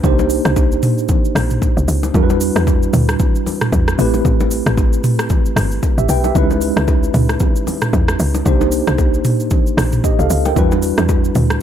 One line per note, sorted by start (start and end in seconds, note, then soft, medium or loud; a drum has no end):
0.03 0.40 C2 loud
0.03 2.10 A#3 medium
0.03 2.10 D4 medium
0.03 2.11 D#4 medium
0.03 2.11 G4 medium
0.03 2.11 C5 medium
0.03 kick loud
0.03 low conga medium
0.03 shaker medium
0.19 low bongo medium
0.19 shaker medium
0.30 open hi-hat medium
0.30 shaker loud
0.45 0.78 C2 loud
0.45 cross-stick medium
0.45 shaker medium
0.56 kick medium
0.56 high bongo medium
0.56 shaker medium
0.72 shaker medium
0.83 mid tom medium
0.83 open hi-hat medium
0.83 shaker medium
0.98 shaker medium
1.09 kick loud
1.09 low conga medium
1.09 shaker medium
1.25 shaker medium
1.35 1.59 A#1 loud
1.35 cross-stick loud
1.35 open hi-hat medium
1.35 low bongo medium
1.35 low conga medium
1.35 shaker medium
1.51 mid tom medium
1.51 shaker medium
1.62 kick medium
1.62 high bongo medium
1.62 shaker medium
1.77 1.87 C2 medium
1.77 shaker medium
1.88 2.11 C#2 medium
1.88 open hi-hat medium
1.88 shaker loud
2.03 low bongo medium
2.03 shaker medium
2.14 2.51 E2 loud
2.14 3.94 G3 medium
2.14 3.95 D4 medium
2.14 3.95 E4 medium
2.14 3.96 F#4 medium
2.14 2.23 A#4 medium
2.14 kick loud
2.14 low conga medium
2.14 shaker medium
2.23 3.99 B4 medium
2.30 low bongo medium
2.30 shaker medium
2.41 open hi-hat medium
2.41 shaker loud
2.56 2.89 E2 medium
2.56 cross-stick medium
2.56 shaker medium
2.67 kick medium
2.67 high bongo medium
2.67 shaker medium
2.83 shaker medium
2.93 3.16 D2 loud
2.93 mid tom medium
2.93 open hi-hat medium
2.93 shaker medium
3.09 cross-stick medium
3.09 shaker medium
3.19 kick loud
3.19 low conga medium
3.19 shaker medium
3.35 shaker medium
3.46 open hi-hat medium
3.46 low bongo medium
3.46 low conga medium
3.46 shaker medium
3.61 cross-stick medium
3.61 mid tom medium
3.61 shaker medium
3.72 3.96 E2 medium
3.72 kick medium
3.72 high bongo medium
3.72 shaker medium
3.88 cross-stick medium
3.88 shaker medium
3.98 4.22 A1 loud
3.98 6.05 A3 medium
3.98 6.05 C4 medium
3.98 6.05 E4 medium
3.98 5.54 G4 medium
3.98 5.54 B4 medium
3.98 open hi-hat medium
3.98 shaker loud
4.14 low bongo medium
4.14 shaker medium
4.25 4.62 A1 loud
4.25 kick loud
4.25 low conga medium
4.25 shaker medium
4.40 low bongo medium
4.40 shaker medium
4.51 open hi-hat medium
4.51 shaker loud
4.66 4.99 A1 loud
4.66 cross-stick medium
4.66 shaker soft
4.77 kick medium
4.77 high bongo medium
4.77 shaker medium
4.93 shaker medium
5.04 mid tom loud
5.04 open hi-hat medium
5.04 shaker medium
5.19 cross-stick loud
5.19 shaker medium
5.30 kick loud
5.30 low conga medium
5.30 shaker medium
5.46 shaker medium
5.56 5.80 G1 loud
5.56 cross-stick loud
5.56 open hi-hat medium
5.56 low bongo medium
5.56 low conga medium
5.56 shaker medium
5.71 shaker medium
5.83 kick medium
5.83 high bongo medium
5.83 shaker medium
5.98 6.08 A1 medium
5.98 6.09 G4 medium
5.98 6.09 E5 medium
5.98 shaker medium
6.09 6.32 B1 medium
6.09 6.24 B4 medium
6.09 6.24 G5 medium
6.09 open hi-hat medium
6.09 low bongo medium
6.09 shaker loud
6.24 6.50 G4 medium
6.24 6.50 E5 medium
6.24 low bongo medium
6.24 shaker medium
6.35 6.72 C#2 loud
6.35 8.41 G#3 medium
6.35 8.42 C#4 medium
6.35 8.42 D#4 medium
6.35 8.43 E4 medium
6.35 8.43 B4 medium
6.35 kick loud
6.35 low conga medium
6.35 shaker medium
6.51 low bongo medium
6.51 shaker medium
6.61 open hi-hat medium
6.61 shaker loud
6.77 7.10 C#2 loud
6.77 cross-stick loud
6.77 shaker medium
6.88 kick loud
6.88 high bongo medium
6.88 shaker medium
7.03 shaker medium
7.14 7.37 C#2 medium
7.14 mid tom loud
7.14 open hi-hat medium
7.14 shaker medium
7.29 cross-stick medium
7.29 shaker medium
7.40 kick loud
7.40 low conga medium
7.40 shaker medium
7.56 shaker medium
7.67 open hi-hat medium
7.67 low bongo medium
7.67 low conga medium
7.67 shaker medium
7.82 cross-stick medium
7.82 mid tom medium
7.82 shaker medium
7.93 8.16 E2 loud
7.93 kick medium
7.93 high bongo medium
7.93 shaker medium
8.08 cross-stick loud
8.08 shaker medium
8.20 8.43 C#2 medium
8.20 open hi-hat medium
8.20 shaker loud
8.35 low bongo medium
8.35 shaker medium
8.45 8.83 C2 loud
8.45 10.52 A#3 medium
8.45 10.52 D4 medium
8.45 10.53 D#4 medium
8.45 10.01 G4 medium
8.45 10.02 C5 medium
8.45 kick loud
8.45 low conga medium
8.45 shaker medium
8.61 low bongo medium
8.61 shaker medium
8.72 open hi-hat medium
8.72 shaker loud
8.87 9.20 C2 loud
8.87 cross-stick loud
8.87 shaker soft
8.98 kick loud
8.98 high bongo medium
8.98 shaker medium
9.14 shaker medium
9.25 mid tom loud
9.25 open hi-hat medium
9.25 shaker medium
9.40 shaker medium
9.51 kick loud
9.51 low conga medium
9.51 shaker medium
9.67 shaker medium
9.77 10.01 A#1 loud
9.77 cross-stick loud
9.77 open hi-hat soft
9.77 low bongo medium
9.77 low conga medium
9.77 shaker medium
9.92 mid tom medium
9.92 shaker medium
10.04 10.19 G4 medium
10.04 10.19 D#5 medium
10.04 kick medium
10.04 high bongo medium
10.04 shaker medium
10.19 10.29 C2 medium
10.19 10.45 A4 medium
10.19 10.44 F5 medium
10.19 shaker medium
10.30 10.53 C#2 medium
10.30 open hi-hat medium
10.30 shaker loud
10.45 10.71 A#4 medium
10.45 10.71 G5 medium
10.45 low bongo medium
10.45 shaker medium
10.56 10.93 E2 loud
10.56 11.62 G3 medium
10.56 11.62 D4 medium
10.56 11.62 E4 medium
10.56 11.62 F#4 medium
10.56 11.62 B4 medium
10.56 kick loud
10.56 low conga medium
10.56 shaker medium
10.72 low bongo medium
10.72 shaker medium
10.82 open hi-hat medium
10.82 shaker loud
10.98 11.31 E2 loud
10.98 cross-stick medium
10.98 shaker medium
11.09 kick medium
11.09 high bongo medium
11.09 shaker medium
11.24 shaker medium
11.35 11.59 D2 medium
11.35 mid tom loud
11.35 open hi-hat medium
11.35 shaker medium
11.50 cross-stick medium
11.50 shaker medium